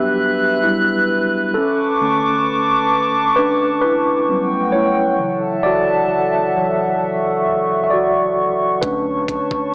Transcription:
Already playing: tine electric piano F#3 G3 B3 D4 G4, analog synth pad B4 E5 F#6
0.63 tine electric piano G3 E4
1.54 tine electric piano C#4 A4, analog synth pad A5 C#6 D6
2.01 tine electric piano D3 A3 C#4
3.36 tine electric piano D4 B4
3.81 tine electric piano E4 B4
4.28 tine electric piano F#3 G3 B3 C#4, analog synth pad A3 F#5 G5
4.72 tine electric piano E4 C#5
5.19 tine electric piano C#3 E3 F#3, analog synth pad A4 E5 A5
5.63 tine electric piano F#4 D5
6.56 tine electric piano E3 F#3 C#5
7.01 analog synth pad C#6
7.84 tine electric piano E5
7.91 tine electric piano F#4 D5
8.82 analog synth bass B1, tine electric piano D3 A3 C#4 D4 B4, analog synth pad B4 C#5 A5, kick, closed hi-hat
9.28 kick, closed hi-hat
9.51 kick

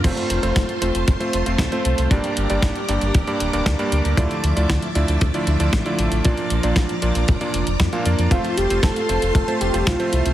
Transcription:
0.04 analog synth bass F1, electric grand piano A3 C4 F4 C5, string machine F4 C5 A5 C6, kick, closed hi-hat, crash
0.17 closed hi-hat
0.30 analog synth bass F1, closed hi-hat
0.43 analog synth bass F1, electric grand piano A3 C4 F4 C5, closed hi-hat
0.56 analog synth bass F1, kick, snare, closed hi-hat
0.69 closed hi-hat
0.82 analog synth bass F1, electric grand piano A3 C4 F4 C5, closed hi-hat
0.95 analog synth bass F1, closed hi-hat
1.08 analog synth bass F1, kick, closed hi-hat
1.20 electric grand piano A3 C4 F4 C5, closed hi-hat
1.33 analog synth bass F1, closed hi-hat
1.46 analog synth bass F1, electric grand piano A3 C4 F4 C5, closed hi-hat
1.58 analog synth bass C2, kick, snare, closed hi-hat
1.72 electric grand piano A3 C4 F4 C5, closed hi-hat
1.85 analog synth bass C2, closed hi-hat
1.98 analog synth bass C2, closed hi-hat
2.11 analog synth bass G1, electric grand piano G2 A#3 D4 G4 D5, string machine G4 D5 A#5 D6, kick, closed hi-hat
2.24 closed hi-hat
2.37 analog synth bass G1, closed hi-hat
2.50 analog synth bass G1, electric grand piano G2 A#3 D4 G4 D5, closed hi-hat
2.62 analog synth bass G1, kick, snare, closed hi-hat
2.76 closed hi-hat
2.89 analog synth bass G1, electric grand piano G2 A#3 D4 G4 D5, closed hi-hat
3.01 analog synth bass G1, closed hi-hat
3.15 analog synth bass D1, kick, closed hi-hat
3.27 electric grand piano G2 A#3 D4 G4 D5, closed hi-hat
3.40 analog synth bass D1, closed hi-hat
3.53 analog synth bass D1, electric grand piano G2 A#3 D4 G4 D5, closed hi-hat
3.66 analog synth bass D2, kick, snare, closed hi-hat
3.79 electric grand piano G2 A#3 D4 G4 D5, closed hi-hat
3.92 analog synth bass D2, closed hi-hat
4.05 analog synth bass D2, closed hi-hat
4.17 analog synth bass D2, electric grand piano D3 A3 E4 F4 D5, string machine F3 E5 A5, kick, closed hi-hat
4.31 closed hi-hat
4.44 analog synth bass D2, closed hi-hat
4.56 analog synth bass D2, electric grand piano D3 A3 E4 F4 D5, closed hi-hat
4.70 analog synth bass D2, kick, snare, closed hi-hat
4.82 closed hi-hat
4.95 analog synth bass D2, electric grand piano D3 A3 E4 F4 D5, closed hi-hat
5.08 analog synth bass D2, closed hi-hat
5.21 analog synth bass D2, kick, closed hi-hat
5.34 electric grand piano D3 A3 E4 F4 D5, closed hi-hat
5.47 analog synth bass D2, closed hi-hat
5.60 analog synth bass D2, electric grand piano D3 A3 E4 F4 D5, closed hi-hat
5.73 analog synth bass A1, kick, snare, closed hi-hat
5.86 electric grand piano D3 A3 E4 F4 D5, closed hi-hat
5.99 analog synth bass A1, closed hi-hat
6.12 analog synth bass A1, closed hi-hat
6.25 analog synth bass A#1, electric grand piano A#2 A#3 D4 F4 D5, string machine D5 A#5, kick, closed hi-hat
6.37 closed hi-hat
6.50 analog synth bass A#1, closed hi-hat
6.63 analog synth bass A#1, electric grand piano A#2 A#3 D4 F4 D5, closed hi-hat
6.76 analog synth bass A#1, kick, snare, closed hi-hat
6.89 closed hi-hat
7.02 analog synth bass A#1, electric grand piano A#2 A#3 D4 F4 D5, closed hi-hat
7.15 analog synth bass A#1, closed hi-hat
7.28 analog synth bass F1, kick, closed hi-hat
7.41 electric grand piano A#2 A#3 D4 F4 D5, closed hi-hat
7.54 analog synth bass F1, closed hi-hat
7.67 analog synth bass F1, closed hi-hat
7.80 analog synth bass F2, kick, snare, closed hi-hat
7.93 electric grand piano A#2 A#3 D4 F4 F5, closed hi-hat
8.06 analog synth bass F2, electric grand piano A#3 D4 F4 D5, closed hi-hat
8.19 analog synth bass F2, closed hi-hat
8.31 analog synth bass F1, electric grand piano A3 C4 F4 C5, analog synth lead F4, string machine F4 C5 A5 C6, kick, closed hi-hat
8.45 closed hi-hat
8.57 analog synth bass F1, analog synth lead G4, closed hi-hat
8.70 analog synth bass F1, electric grand piano A3 C4 F4 C5, closed hi-hat
8.83 analog synth bass F1, analog synth lead A4, kick, snare, closed hi-hat
8.96 closed hi-hat
9.09 analog synth bass F1, electric grand piano A3 C4 F4 C5, closed hi-hat
9.22 analog synth bass F1, closed hi-hat
9.35 analog synth bass F1, analog synth lead A4, kick, closed hi-hat
9.48 electric grand piano A3 C4 F4 C5, closed hi-hat
9.61 analog synth bass F1, analog synth lead G4, closed hi-hat
9.74 analog synth bass F1, electric grand piano A3 C4 F4 C5, closed hi-hat
9.87 analog synth bass C2, analog synth lead F4, kick, snare, closed hi-hat
10.00 electric grand piano A3 C4 F4 C5, closed hi-hat
10.13 analog synth bass C2, analog synth lead E4, closed hi-hat
10.26 analog synth bass C2, closed hi-hat

